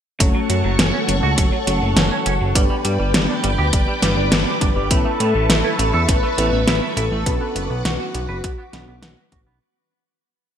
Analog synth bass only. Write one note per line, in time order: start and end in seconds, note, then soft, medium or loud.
0.20 0.33 F#1 loud
0.50 0.63 F#2 medium
0.64 0.78 F#1 medium
0.79 0.92 F#1 loud
1.08 1.22 F#1 medium
1.23 1.36 C#2 medium
1.38 1.51 F#1 loud
1.67 1.81 F#1 loud
1.82 1.95 F#1 medium
1.97 2.10 F#1 loud
2.26 2.39 F#1 medium
2.41 2.54 F#1 medium
2.55 2.69 G1 loud
2.85 2.98 G2 medium
3.00 3.13 G1 medium
3.14 3.28 G1 loud
3.44 3.57 G1 medium
3.59 3.72 D2 medium
3.73 3.86 G1 loud
4.03 4.16 G1 loud
4.17 4.31 G1 medium
4.32 4.45 G1 loud
4.61 4.75 G1 medium
4.76 4.90 G1 medium
4.91 5.04 A1 loud
5.20 5.33 A2 loud
5.35 5.48 A1 medium
5.49 5.63 A1 loud
5.79 5.92 A1 medium
5.94 6.07 E2 medium
6.08 6.22 A1 loud
6.38 6.51 A1 loud
6.52 6.66 A1 medium
6.67 6.80 A1 loud
6.97 7.10 A1 loud
7.11 7.25 A1 medium
7.26 7.39 B1 loud
7.55 7.69 F#1 medium
7.70 7.83 B1 medium
7.85 7.98 B1 loud
8.14 8.28 B1 medium
8.29 8.42 F#1 medium
8.73 8.87 B1 loud
8.88 9.01 B1 medium
9.03 9.16 B1 loud
9.32 9.45 A1 medium
9.47 9.60 B1 medium